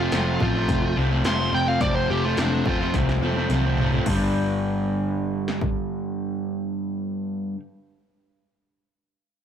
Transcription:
Already playing: F2 C3 F3 C4 F4 A4
0.00 F3 A3 F4
0.11 F1 F2 C3 F3 A3 C4 F4 A4, snare, open hi-hat
0.26 C4 F4 A4
0.40 A1 C3 F3 A3 C4 F4 A4, kick
0.54 F3 A3 C4 F4 A4
0.69 F1, kick, open hi-hat
0.96 C2 C3 F3 A3 C4 F4 A4
1.10 F3 A3 C4
1.24 F2 C3 F3 A3 C4 F4 A4 C6, snare, open hi-hat
1.39 F3 A3 C4
1.52 F1 C3 F3 A3 C4 A4 G5
1.65 F3 A3 C4 F4 A4 F5
1.80 F1 F2 C3 F3 A3 C4 F4 A4 D5, kick, open hi-hat
1.95 C5
2.09 F1 C3 F3 A3 C4 F4 G4 A4
2.24 F3 A3 C4 F4
2.37 F1 F2 C3 F3 A3 C4 D4 F4 A4, snare, open hi-hat
2.52 C4 F4 A4
2.66 F2 C3 F3 A3 C4 F4 A4, kick
2.80 F3 A3 C4 F4 A4
2.94 C2, kick, snare, open hi-hat
3.09 snare
3.21 F1 C3 F3 A3 C4 F4 A4, high tom
3.36 F3 A3 C4, high tom
3.50 C2 F2 C3 F3 A3 C4 F4 A4, open hi-hat, mid tom
3.64 F3 A3 C4, mid tom
3.78 C3 F3 A3 C4, floor tom
3.82 C4 F4 A4
3.92 F3 A3 C4 F4 A4, floor tom
4.02 G1 G2, kick, crash
4.07 D3 G3
4.13 B3 D4
4.18 B4
5.48 snare
5.61 kick

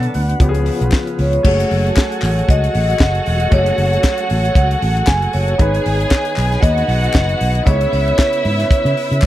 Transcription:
Already playing: D3 F#3 B3 D4 A4 F#5
0.03 closed hi-hat
0.14 D2 F#4, open hi-hat
0.29 closed hi-hat
0.40 C#2 C#3 F3 B3 C#4 G4, kick, closed hi-hat
0.49 G#4
0.55 closed hi-hat
0.66 open hi-hat
0.81 B1, closed hi-hat
0.92 kick, snare, clap
1.07 closed hi-hat
1.19 C#2 C#5, open hi-hat
1.33 closed hi-hat
1.43 F#1 F#3 A3 C#4 F#4 G#4 C#5 F#5, kick, crash
1.60 closed hi-hat
1.71 F#1, open hi-hat
1.86 closed hi-hat
1.97 kick, snare, clap
2.12 closed hi-hat
2.22 A1, clap, open hi-hat
2.39 closed hi-hat
2.49 C#2 D#5, kick, closed hi-hat
2.64 closed hi-hat
2.75 A1, open hi-hat
2.90 closed hi-hat
2.99 F#1, kick, snare, clap
3.15 closed hi-hat
3.26 E1, open hi-hat
3.40 closed hi-hat
3.51 F#1 A3 C#4 F#4 G#4 C#5, kick, closed hi-hat
3.66 closed hi-hat
3.78 F#1, open hi-hat
3.93 closed hi-hat
4.04 kick, snare, clap
4.18 closed hi-hat
4.30 A1, open hi-hat
4.45 closed hi-hat
4.55 C#2 F#5, kick, closed hi-hat
4.71 closed hi-hat
4.82 A1, open hi-hat
4.97 closed hi-hat
5.07 F#1 G#5, kick, snare, clap
5.22 closed hi-hat
5.33 F#1 C#5, open hi-hat
5.48 closed hi-hat
5.58 G#1 D#3 B3 D#4 G#4 B4 G#5, kick, closed hi-hat
5.74 closed hi-hat
5.86 G#1, open hi-hat
6.00 closed hi-hat
6.11 kick, snare, clap
6.25 closed hi-hat
6.36 B1, clap, open hi-hat
6.52 snare, closed hi-hat
6.62 D#2 F#4 D#5 F#5, kick, closed hi-hat
6.78 closed hi-hat
6.88 B1, open hi-hat
7.04 closed hi-hat
7.14 F#1, kick, snare, clap
7.29 closed hi-hat
7.41 B1, open hi-hat
7.55 closed hi-hat
7.65 C#2 C#3 B3 C#4 D#4 E4 G#4 C#5 E5, kick, closed hi-hat
7.73 E4
7.81 closed hi-hat
7.93 C#2 C#5, open hi-hat
8.08 closed hi-hat
8.19 kick, snare, clap
8.33 closed hi-hat
8.45 G#2, open hi-hat
8.60 snare, closed hi-hat
8.71 kick, closed hi-hat
8.85 C#3, closed hi-hat
8.97 open hi-hat
9.12 C#3, closed hi-hat
9.22 G#1, kick, clap, high tom

